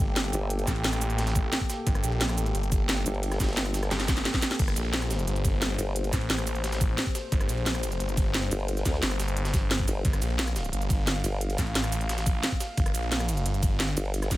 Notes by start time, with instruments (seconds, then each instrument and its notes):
Already playing: detuned saw bass G1, analog synth pad A#3 G4 A4 G5
0.16 snare, closed hi-hat, ride
0.25 ride
0.33 wobble bass G1, closed hi-hat, ride, cabasa
0.50 closed hi-hat, ride
0.59 closed hi-hat, ride
0.67 detuned saw bass A1, kick, snare, closed hi-hat, cabasa
0.76 ride
0.84 snare, closed hi-hat, ride
0.93 cross-stick, closed hi-hat
1.01 closed hi-hat, ride, cabasa
1.10 closed hi-hat
1.18 snare, closed hi-hat, ride
1.27 snare, closed hi-hat, ride, cabasa
1.35 kick, closed hi-hat, ride, cabasa
1.53 snare, closed hi-hat, ride
1.61 kick, ride
1.70 snare, closed hi-hat, ride, cabasa
1.87 detuned saw bass G1, kick, closed hi-hat, ride
1.95 cross-stick, closed hi-hat
2.04 detuned saw bass A#1, closed hi-hat, ride, cabasa
2.12 ride
2.21 snare, closed hi-hat, ride
2.29 cross-stick, closed hi-hat
2.38 closed hi-hat, ride, cabasa
2.46 closed hi-hat, ride
2.55 detuned saw bass G1, closed hi-hat, ride
2.63 closed hi-hat
2.72 kick, closed hi-hat, ride, cabasa
2.89 snare, closed hi-hat, ride
2.97 ride
3.06 wobble bass G1, closed hi-hat, ride, cabasa
3.14 ride
3.23 closed hi-hat, ride
3.32 cross-stick, snare, closed hi-hat, cabasa
3.40 wobble bass G1, kick, snare, closed hi-hat, ride, cabasa
3.44 snare, ride
3.49 snare, ride
3.53 snare, ride
3.57 snare, closed hi-hat, ride
3.66 cross-stick, closed hi-hat
3.74 snare, closed hi-hat, ride, cabasa
3.83 cross-stick, snare, closed hi-hat
3.91 detuned saw bass G1, snare, closed hi-hat, ride
4.00 snare, closed hi-hat, ride
4.08 kick, snare, closed hi-hat, ride, cabasa
4.17 snare, ride, cabasa
4.25 snare, closed hi-hat, ride
4.34 kick, snare
4.42 snare, closed hi-hat, ride, cabasa
4.51 snare
4.59 detuned saw bass G1, analog synth pad C5, kick, closed hi-hat, crash, ride
4.68 cross-stick, closed hi-hat
4.76 detuned saw bass A#1, closed hi-hat, ride, cabasa
4.85 ride
4.93 snare, closed hi-hat, ride
5.02 cross-stick, closed hi-hat
5.11 snare, closed hi-hat, ride, cabasa
5.19 closed hi-hat
5.28 detuned saw bass G1, closed hi-hat, ride
5.36 closed hi-hat, ride
5.45 kick, closed hi-hat, ride, cabasa
5.62 snare, closed hi-hat, ride
5.70 ride
5.79 wobble bass G1, closed hi-hat, ride, cabasa
5.96 closed hi-hat, ride
6.04 closed hi-hat, ride
6.13 detuned saw bass A1, kick, snare, closed hi-hat, ride, cabasa
6.21 ride
6.30 snare, closed hi-hat, ride
6.38 cross-stick, closed hi-hat
6.47 closed hi-hat, ride, cabasa
6.55 closed hi-hat
6.64 snare, closed hi-hat, ride
6.72 snare, closed hi-hat, ride, cabasa
6.81 kick, closed hi-hat, ride, cabasa
6.98 snare, closed hi-hat, ride
7.07 kick, ride
7.15 snare, closed hi-hat, ride, cabasa
7.32 detuned saw bass G1, kick, closed hi-hat, ride
7.41 cross-stick, closed hi-hat
7.49 detuned saw bass A#1, closed hi-hat, ride, cabasa
7.58 ride
7.66 snare, closed hi-hat, ride
7.75 cross-stick, closed hi-hat
7.83 closed hi-hat, ride, cabasa
7.92 closed hi-hat, ride
8.00 detuned saw bass G1, closed hi-hat, ride
8.09 closed hi-hat
8.17 kick, closed hi-hat, ride, cabasa
8.34 snare, closed hi-hat, ride
8.43 ride
8.51 wobble bass G1, closed hi-hat, ride, cabasa
8.60 ride
8.68 closed hi-hat, ride
8.77 snare, closed hi-hat
8.85 wobble bass D2, kick, snare, closed hi-hat, ride, cabasa
8.94 snare
9.02 detuned saw bass G1, snare, closed hi-hat, ride
9.11 cross-stick, closed hi-hat
9.20 snare, closed hi-hat, ride, cabasa
9.28 closed hi-hat, ride
9.37 closed hi-hat, ride
9.45 snare, closed hi-hat, ride, cabasa
9.54 kick, snare, closed hi-hat, ride, cabasa
9.71 snare, closed hi-hat, ride
9.79 kick, ride
9.88 wobble bass G1, closed hi-hat, ride, cabasa
10.05 detuned saw bass G1, analog synth pad F5, kick, closed hi-hat, ride
10.13 cross-stick, closed hi-hat
10.22 detuned saw bass A#1, closed hi-hat, ride, cabasa
10.30 ride
10.39 snare, closed hi-hat, ride
10.47 cross-stick, closed hi-hat
10.56 snare, closed hi-hat, ride, cabasa
10.64 closed hi-hat
10.73 detuned saw bass G1, closed hi-hat, ride
10.82 closed hi-hat, ride
10.90 kick, closed hi-hat, ride, cabasa
11.07 snare, closed hi-hat, ride
11.16 ride
11.24 wobble bass G1, closed hi-hat, ride, cabasa
11.41 closed hi-hat, ride
11.50 closed hi-hat, ride
11.58 detuned saw bass A1, kick, snare, closed hi-hat, ride, cabasa
11.67 ride
11.75 snare, closed hi-hat, ride
11.84 cross-stick, closed hi-hat
11.92 closed hi-hat, ride, cabasa
12.01 closed hi-hat
12.09 snare, closed hi-hat, ride
12.18 snare, closed hi-hat, ride, cabasa
12.26 kick, closed hi-hat, ride, cabasa
12.43 snare, closed hi-hat, ride
12.52 kick, ride
12.60 snare, closed hi-hat, ride, cabasa
12.77 detuned saw bass G1, kick, closed hi-hat, ride
12.86 cross-stick, closed hi-hat
12.95 detuned saw bass A#1, closed hi-hat, ride, cabasa
13.03 ride
13.12 snare, closed hi-hat, ride
13.20 cross-stick, closed hi-hat
13.29 closed hi-hat, ride, cabasa
13.37 closed hi-hat, ride
13.46 detuned saw bass G1, closed hi-hat, ride
13.54 closed hi-hat
13.63 kick, closed hi-hat, ride, cabasa
13.80 snare, closed hi-hat, ride
13.88 ride
13.97 wobble bass G1, closed hi-hat, ride, cabasa
14.05 ride
14.14 closed hi-hat, ride
14.22 cross-stick, snare, closed hi-hat, cabasa
14.31 wobble bass G1, kick, snare, closed hi-hat, ride, cabasa